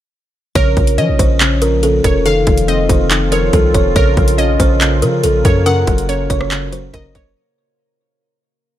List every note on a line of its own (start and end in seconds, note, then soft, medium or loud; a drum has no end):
0.55 0.76 A#1 loud
0.55 1.39 C#3 loud
0.55 2.24 C#3 medium
0.55 2.24 A#3 medium
0.55 5.62 F4 medium
0.55 0.95 A#4 loud
0.55 2.24 A#4 medium
0.55 0.96 C#5 loud
0.55 kick loud
0.55 closed hi-hat medium
0.77 1.00 A#1 loud
0.77 1.60 F3 medium
0.77 kick medium
0.77 closed hi-hat soft
0.87 closed hi-hat medium
0.98 1.10 F3 loud
0.98 2.04 C#4 loud
0.98 1.38 D#5 medium
0.98 closed hi-hat medium
1.09 1.19 A#1 loud
1.19 2.01 A#1 loud
1.19 1.39 C5 medium
1.19 kick medium
1.19 closed hi-hat medium
1.40 1.82 C#3 medium
1.40 clap loud
1.40 closed hi-hat medium
1.62 2.26 F3 medium
1.62 1.82 A#4 medium
1.62 closed hi-hat medium
1.83 2.26 C#3 medium
1.83 2.03 A4 medium
1.83 closed hi-hat medium
2.04 2.45 F1 loud
2.04 2.24 A#4 medium
2.04 2.25 C#5 medium
2.04 kick medium
2.04 closed hi-hat medium
2.26 3.09 D#3 loud
2.26 3.94 D#3 medium
2.26 3.94 C4 medium
2.26 2.66 A4 loud
2.26 3.94 A4 medium
2.26 2.66 F5 loud
2.26 closed hi-hat medium
2.47 2.88 F1 loud
2.47 3.31 F3 medium
2.47 kick loud
2.47 closed hi-hat soft
2.47 open hi-hat medium
2.58 closed hi-hat medium
2.68 3.75 C4 loud
2.68 3.28 D#5 medium
2.68 closed hi-hat medium
2.89 3.51 F1 loud
2.89 3.09 C5 medium
2.89 kick loud
2.89 closed hi-hat medium
3.11 3.52 D#3 medium
3.11 clap loud
3.11 closed hi-hat medium
3.32 3.96 F3 medium
3.32 3.52 A#4 medium
3.32 3.52 C#5 medium
3.32 closed hi-hat medium
3.53 3.74 C2 loud
3.53 3.96 D#3 medium
3.53 3.73 A4 medium
3.53 kick medium
3.53 closed hi-hat medium
3.74 3.95 F1 loud
3.74 3.94 C#5 medium
3.74 kick medium
3.74 closed hi-hat medium
3.96 4.16 A#1 loud
3.96 4.80 C#3 loud
3.96 7.33 C#3 medium
3.96 7.33 A#3 medium
3.96 4.36 A#4 loud
3.96 7.33 A#4 medium
3.96 4.36 C#5 loud
3.96 kick loud
3.96 closed hi-hat medium
4.17 4.58 A#1 loud
4.17 5.02 F3 medium
4.17 kick medium
4.17 closed hi-hat soft
4.28 closed hi-hat medium
4.38 5.45 C#4 loud
4.38 4.78 D#5 medium
4.38 closed hi-hat medium
4.60 5.04 A#1 loud
4.60 4.80 C5 medium
4.60 kick medium
4.60 closed hi-hat medium
4.81 5.22 C#3 medium
4.81 clap loud
4.81 closed hi-hat medium
5.02 5.25 C#3 loud
5.02 5.67 F3 medium
5.02 5.22 A#4 medium
5.02 closed hi-hat medium
5.24 5.44 A#1 loud
5.24 5.65 C#3 medium
5.24 5.44 A4 medium
5.24 closed hi-hat medium
5.45 5.86 F#2 loud
5.45 5.65 A#4 medium
5.45 5.65 C#5 medium
5.45 kick medium
5.45 closed hi-hat medium
5.66 6.50 C#3 loud
5.66 7.35 F#4 medium
5.66 6.06 A#4 loud
5.66 6.06 F#5 loud
5.66 closed hi-hat medium
5.87 6.28 F#1 loud
5.87 6.71 F#3 medium
5.87 kick medium
5.87 closed hi-hat soft
5.87 open hi-hat medium
5.98 closed hi-hat medium
6.09 7.15 C#4 medium
6.09 6.90 C#5 medium
6.09 closed hi-hat medium
6.30 6.91 F#1 loud
6.30 6.50 C#5 loud
6.30 kick loud
6.30 closed hi-hat medium
6.41 cross-stick loud
6.51 6.93 C#3 loud
6.51 clap loud
6.51 closed hi-hat medium
6.72 7.36 F#3 medium
6.72 6.92 C5 medium
6.72 closed hi-hat medium
6.93 7.14 F#1 loud
6.93 7.36 C#3 medium
6.93 7.14 A#4 medium
6.93 7.14 D#5 medium
6.93 kick medium
6.93 closed hi-hat medium
7.15 7.35 F#1 loud
7.15 7.35 C#5 medium
7.15 kick medium
7.15 closed hi-hat medium